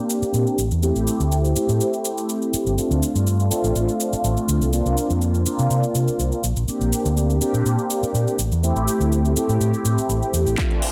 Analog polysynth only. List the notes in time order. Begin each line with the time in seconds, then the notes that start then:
Already playing: A#3 C4 D4 G4
0.81 A3 C4 E4 G4
1.55 A3 C4 E4 G4
2.77 A3 C4 D4 F4
3.50 A3 C4 D4 F4
4.72 A#3 C4 D4 F4
5.45 A#3 C4 D4 F4
6.67 A#3 C4 D4 G4
7.40 A#3 C4 D4 G4
8.62 A3 C4 E4 G4
9.36 A3 C4 E4 G4
10.57 A3 C4 D4 F4